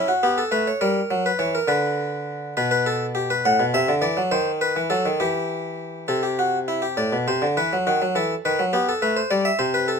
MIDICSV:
0, 0, Header, 1, 2, 480
1, 0, Start_track
1, 0, Key_signature, 1, "minor"
1, 0, Tempo, 584226
1, 672, Time_signature, 6, 3, 24, 8
1, 8214, End_track
2, 0, Start_track
2, 0, Title_t, "Harpsichord"
2, 0, Program_c, 0, 6
2, 0, Note_on_c, 0, 61, 73
2, 67, Note_on_c, 0, 66, 62
2, 101, Note_off_c, 0, 61, 0
2, 187, Note_off_c, 0, 66, 0
2, 190, Note_on_c, 0, 59, 73
2, 191, Note_on_c, 0, 67, 56
2, 309, Note_off_c, 0, 67, 0
2, 311, Note_on_c, 0, 69, 57
2, 339, Note_off_c, 0, 59, 0
2, 423, Note_on_c, 0, 57, 76
2, 425, Note_on_c, 0, 71, 65
2, 428, Note_off_c, 0, 69, 0
2, 545, Note_off_c, 0, 71, 0
2, 554, Note_on_c, 0, 73, 57
2, 574, Note_off_c, 0, 57, 0
2, 666, Note_on_c, 0, 70, 68
2, 667, Note_on_c, 0, 55, 84
2, 669, Note_off_c, 0, 73, 0
2, 816, Note_off_c, 0, 55, 0
2, 908, Note_on_c, 0, 54, 78
2, 1015, Note_off_c, 0, 70, 0
2, 1035, Note_on_c, 0, 71, 59
2, 1057, Note_off_c, 0, 54, 0
2, 1141, Note_on_c, 0, 73, 61
2, 1143, Note_on_c, 0, 52, 74
2, 1148, Note_off_c, 0, 71, 0
2, 1261, Note_off_c, 0, 73, 0
2, 1271, Note_on_c, 0, 70, 62
2, 1293, Note_off_c, 0, 52, 0
2, 1377, Note_on_c, 0, 50, 79
2, 1381, Note_on_c, 0, 71, 66
2, 1386, Note_off_c, 0, 70, 0
2, 2079, Note_off_c, 0, 50, 0
2, 2081, Note_off_c, 0, 71, 0
2, 2111, Note_on_c, 0, 71, 64
2, 2113, Note_on_c, 0, 47, 73
2, 2218, Note_off_c, 0, 71, 0
2, 2228, Note_on_c, 0, 71, 87
2, 2344, Note_off_c, 0, 71, 0
2, 2353, Note_on_c, 0, 69, 83
2, 2500, Note_off_c, 0, 69, 0
2, 2587, Note_on_c, 0, 67, 83
2, 2704, Note_off_c, 0, 67, 0
2, 2714, Note_on_c, 0, 71, 83
2, 2811, Note_off_c, 0, 47, 0
2, 2828, Note_off_c, 0, 71, 0
2, 2837, Note_on_c, 0, 78, 86
2, 2838, Note_on_c, 0, 45, 70
2, 2951, Note_off_c, 0, 45, 0
2, 2954, Note_on_c, 0, 47, 71
2, 2984, Note_off_c, 0, 78, 0
2, 3069, Note_off_c, 0, 47, 0
2, 3072, Note_on_c, 0, 48, 69
2, 3075, Note_on_c, 0, 76, 88
2, 3187, Note_off_c, 0, 48, 0
2, 3192, Note_on_c, 0, 50, 69
2, 3222, Note_off_c, 0, 76, 0
2, 3299, Note_on_c, 0, 52, 71
2, 3301, Note_on_c, 0, 74, 91
2, 3307, Note_off_c, 0, 50, 0
2, 3420, Note_off_c, 0, 52, 0
2, 3427, Note_on_c, 0, 54, 69
2, 3452, Note_off_c, 0, 74, 0
2, 3544, Note_off_c, 0, 54, 0
2, 3544, Note_on_c, 0, 72, 98
2, 3546, Note_on_c, 0, 51, 83
2, 3695, Note_off_c, 0, 72, 0
2, 3790, Note_on_c, 0, 71, 92
2, 3897, Note_off_c, 0, 51, 0
2, 3912, Note_on_c, 0, 52, 68
2, 3939, Note_off_c, 0, 71, 0
2, 4025, Note_on_c, 0, 69, 89
2, 4028, Note_off_c, 0, 52, 0
2, 4028, Note_on_c, 0, 54, 77
2, 4146, Note_off_c, 0, 54, 0
2, 4154, Note_on_c, 0, 51, 75
2, 4176, Note_off_c, 0, 69, 0
2, 4270, Note_off_c, 0, 51, 0
2, 4272, Note_on_c, 0, 67, 80
2, 4274, Note_on_c, 0, 52, 73
2, 4979, Note_off_c, 0, 67, 0
2, 4980, Note_off_c, 0, 52, 0
2, 4996, Note_on_c, 0, 69, 61
2, 4999, Note_on_c, 0, 48, 59
2, 5117, Note_off_c, 0, 69, 0
2, 5118, Note_on_c, 0, 67, 61
2, 5240, Note_off_c, 0, 67, 0
2, 5249, Note_on_c, 0, 66, 68
2, 5400, Note_off_c, 0, 66, 0
2, 5489, Note_on_c, 0, 64, 65
2, 5604, Note_on_c, 0, 67, 65
2, 5608, Note_off_c, 0, 64, 0
2, 5711, Note_off_c, 0, 48, 0
2, 5726, Note_off_c, 0, 67, 0
2, 5728, Note_on_c, 0, 45, 55
2, 5729, Note_on_c, 0, 74, 65
2, 5848, Note_off_c, 0, 45, 0
2, 5854, Note_on_c, 0, 47, 60
2, 5880, Note_off_c, 0, 74, 0
2, 5971, Note_off_c, 0, 47, 0
2, 5978, Note_on_c, 0, 72, 65
2, 5979, Note_on_c, 0, 48, 57
2, 6094, Note_off_c, 0, 48, 0
2, 6097, Note_on_c, 0, 50, 61
2, 6126, Note_off_c, 0, 72, 0
2, 6212, Note_off_c, 0, 50, 0
2, 6221, Note_on_c, 0, 52, 61
2, 6222, Note_on_c, 0, 71, 64
2, 6334, Note_off_c, 0, 52, 0
2, 6349, Note_on_c, 0, 54, 59
2, 6368, Note_off_c, 0, 71, 0
2, 6459, Note_off_c, 0, 54, 0
2, 6465, Note_on_c, 0, 66, 58
2, 6467, Note_on_c, 0, 51, 69
2, 6577, Note_off_c, 0, 51, 0
2, 6587, Note_on_c, 0, 54, 64
2, 6610, Note_off_c, 0, 66, 0
2, 6697, Note_off_c, 0, 54, 0
2, 6699, Note_on_c, 0, 52, 77
2, 6703, Note_on_c, 0, 69, 61
2, 6845, Note_off_c, 0, 52, 0
2, 6848, Note_off_c, 0, 69, 0
2, 6944, Note_on_c, 0, 51, 70
2, 6946, Note_on_c, 0, 71, 62
2, 7054, Note_off_c, 0, 51, 0
2, 7060, Note_on_c, 0, 54, 72
2, 7089, Note_off_c, 0, 71, 0
2, 7170, Note_off_c, 0, 54, 0
2, 7173, Note_on_c, 0, 67, 65
2, 7175, Note_on_c, 0, 59, 72
2, 7286, Note_off_c, 0, 67, 0
2, 7301, Note_on_c, 0, 69, 70
2, 7320, Note_off_c, 0, 59, 0
2, 7410, Note_off_c, 0, 69, 0
2, 7413, Note_on_c, 0, 57, 81
2, 7413, Note_on_c, 0, 71, 63
2, 7524, Note_off_c, 0, 71, 0
2, 7530, Note_on_c, 0, 72, 63
2, 7557, Note_off_c, 0, 57, 0
2, 7642, Note_off_c, 0, 72, 0
2, 7645, Note_on_c, 0, 74, 71
2, 7647, Note_on_c, 0, 55, 77
2, 7759, Note_off_c, 0, 74, 0
2, 7765, Note_on_c, 0, 76, 70
2, 7793, Note_off_c, 0, 55, 0
2, 7877, Note_on_c, 0, 72, 83
2, 7878, Note_off_c, 0, 76, 0
2, 7879, Note_on_c, 0, 48, 65
2, 7994, Note_off_c, 0, 72, 0
2, 8003, Note_on_c, 0, 71, 80
2, 8117, Note_off_c, 0, 71, 0
2, 8118, Note_on_c, 0, 69, 75
2, 8214, Note_off_c, 0, 48, 0
2, 8214, Note_off_c, 0, 69, 0
2, 8214, End_track
0, 0, End_of_file